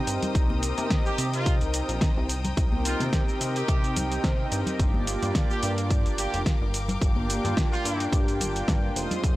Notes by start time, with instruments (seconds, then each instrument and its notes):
Already playing: string section C5 G5 A#5 D#6
0.07 analog synth bass G2, analog synth pad C4 D#4 G4 A#4 D#5, open hi-hat, shaker
0.23 closed hi-hat, low conga, shaker
0.34 analog synth bass C2, analog synth pad C4 D#4 G4 A#4 D#5, kick, closed hi-hat, shaker
0.50 high conga
0.63 open hi-hat, shaker
0.78 analog synth bass C3, closed hi-hat, high conga, shaker
0.90 kick, snare, closed hi-hat, shaker
1.06 trumpet section G4, shaker
1.18 analog synth bass C3, open hi-hat, shaker
1.33 trumpet section F4, closed hi-hat, shaker
1.46 kick, closed hi-hat, shaker
1.61 analog synth bass C2, closed hi-hat, shaker
1.74 analog synth pad C4 D#4 G4 A#4 G5, open hi-hat, shaker
1.89 analog synth bass A#1, closed hi-hat, shaker
2.01 kick, snare, closed hi-hat, shaker
2.17 analog synth bass C2
2.29 open hi-hat, shaker
2.44 closed hi-hat, low conga, shaker
2.57 analog synth bass C2, analog synth pad C4 D#4 G4 A#4 G5, kick, closed hi-hat, shaker
2.72 high conga
2.85 trumpet section F4, open hi-hat, shaker
3.00 analog synth bass C3, snare, closed hi-hat, high conga, shaker
3.13 kick, snare, closed hi-hat, shaker
3.29 shaker
3.41 analog synth bass C3, open hi-hat, shaker
3.56 trumpet section G4, closed hi-hat, shaker
3.68 analog synth bass C3, kick, closed hi-hat, shaker
3.84 closed hi-hat, shaker
3.96 analog synth bass C2, open hi-hat, low conga, shaker
4.12 closed hi-hat, shaker
4.24 analog synth bass C3, kick, snare, closed hi-hat, shaker
4.52 analog synth bass G2, analog synth pad C4 D#4 G4 A#4 D#5, open hi-hat, shaker
4.67 closed hi-hat, low conga, shaker
4.79 analog synth bass G1, analog synth pad A#3 D4 F4 G4 D5, string section A#4 F5 D6, kick, closed hi-hat, shaker
4.94 high conga
5.07 open hi-hat, shaker
5.22 analog synth bass G2, closed hi-hat, high conga, shaker
5.35 kick, snare, closed hi-hat, shaker
5.50 trumpet section G4, shaker
5.63 analog synth bass G2, open hi-hat, shaker
5.78 closed hi-hat, shaker
5.90 kick, closed hi-hat, shaker
6.06 analog synth bass G1, closed hi-hat, shaker
6.18 analog synth pad A#3 D4 F4 G4 G5, trumpet section G4, open hi-hat, shaker
6.34 analog synth bass F1, closed hi-hat, shaker
6.46 kick, snare, closed hi-hat, shaker
6.61 analog synth bass G1
6.74 open hi-hat, shaker
6.88 closed hi-hat, low conga, shaker
7.01 analog synth bass G1, analog synth pad A#3 D4 F4 G4 G5, kick, closed hi-hat, shaker
7.16 high conga
7.30 open hi-hat, shaker
7.45 analog synth bass G2, snare, closed hi-hat, high conga, shaker
7.57 kick, snare, closed hi-hat, shaker
7.72 trumpet section F4, shaker
7.85 analog synth bass G2, open hi-hat, shaker
8.00 closed hi-hat, shaker
8.12 analog synth bass G2, kick, closed hi-hat, shaker
8.28 closed hi-hat, shaker
8.40 analog synth bass G1, open hi-hat, low conga, shaker
8.56 closed hi-hat, shaker
8.68 analog synth bass G2, kick, snare, closed hi-hat, shaker
8.96 analog synth bass F1, analog synth pad G#3 C4 D#4 F4 C5, string section C5 F5 C6 D#6, open hi-hat, shaker
9.11 closed hi-hat, low conga, shaker
9.23 analog synth bass F1, analog synth pad G#3 C4 D#4 F4 C5, kick, closed hi-hat, shaker